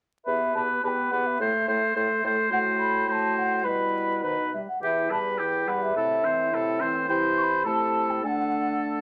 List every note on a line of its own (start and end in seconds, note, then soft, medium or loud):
0.25 0.40 E2 soft
0.25 0.55 B3 soft
0.25 0.55 G4 soft
0.25 0.54 B4 soft
0.25 0.53 E5 soft
0.55 0.68 E2 soft
0.55 0.83 B3 soft
0.55 0.83 G4 soft
0.55 0.83 B4 soft
0.55 0.61 A5 soft
0.83 0.96 E2 soft
0.83 1.11 B3 soft
0.83 1.11 G4 soft
0.83 1.12 B4 soft
0.83 0.89 A5 soft
0.88 1.13 G5 soft
1.11 1.24 E2 soft
1.11 1.39 B3 soft
1.11 1.39 G4 soft
1.11 1.40 B4 soft
1.11 1.28 F#5 medium
1.26 2.24 E5 medium
1.39 1.52 A2 medium
1.39 1.68 A3 soft
1.39 1.67 A4 soft
1.39 1.68 C5 soft
1.67 1.80 A2 medium
1.67 1.96 A3 soft
1.67 1.94 A4 soft
1.67 1.95 C5 soft
1.95 2.08 A2 medium
1.95 2.23 A3 soft
1.95 2.22 A4 soft
1.95 2.23 C5 soft
2.23 2.36 A2 soft
2.23 2.51 A3 soft
2.23 2.50 A4 soft
2.23 2.51 C5 soft
2.50 3.66 A2 medium
2.50 3.04 A3 medium
2.50 3.03 F#4 soft
2.50 3.04 C5 soft
2.50 2.59 F#5 medium
2.79 3.08 B5 medium
3.07 3.66 A3 soft
3.07 3.66 F#4 soft
3.07 3.66 C5 soft
3.07 3.13 B5 medium
3.12 3.36 A5 medium
3.37 3.65 F#5 medium
3.64 4.53 B2 soft
3.64 4.23 G3 soft
3.64 4.25 E4 soft
3.64 4.22 B4 soft
3.64 4.25 B4 medium
4.23 4.37 D#3 soft
4.23 4.53 D#4 soft
4.23 4.52 B4 soft
4.23 4.38 C5 soft
4.39 4.53 D#5 soft
4.53 4.67 G3 soft
4.53 4.59 E5 soft
4.68 4.82 F#5 soft
4.81 5.92 E2 soft
4.81 5.11 E3 soft
4.81 5.12 E4 soft
4.81 5.12 G4 soft
4.81 5.11 E5 medium
5.10 5.41 G3 soft
5.10 5.41 G4 soft
5.10 5.40 B4 soft
5.10 5.18 A5 medium
5.39 5.69 E3 soft
5.39 5.70 E4 soft
5.39 5.70 G4 soft
5.39 5.70 G5 soft
5.67 5.95 G3 soft
5.67 5.96 G4 soft
5.67 5.96 B4 soft
5.67 5.84 F#5 medium
5.83 6.81 E5 medium
5.95 7.07 A2 soft
5.95 6.26 C3 soft
5.95 6.25 E4 soft
5.95 6.26 A4 soft
6.24 6.54 E3 soft
6.24 6.53 C4 soft
6.24 6.56 C5 soft
6.52 6.83 C3 soft
6.52 6.82 E4 soft
6.52 6.82 A4 soft
6.80 7.09 E3 soft
6.80 7.08 C4 soft
6.80 7.08 C5 soft
7.08 7.62 C3 medium
7.08 7.67 E3 soft
7.08 7.61 E4 medium
7.08 7.62 C5 soft
7.08 7.16 G5 medium
7.38 7.43 C#6 medium
7.42 7.68 B5 medium
7.64 8.25 C3 medium
7.64 8.23 A3 soft
7.64 8.26 E4 soft
7.64 8.22 A4 soft
7.64 8.12 A5 medium
8.10 8.23 G5 medium
8.23 9.01 D3 soft
8.23 9.01 A3 soft
8.23 9.01 D4 soft
8.23 9.01 A4 soft
8.23 8.28 G#5 soft
8.27 8.82 F#5 medium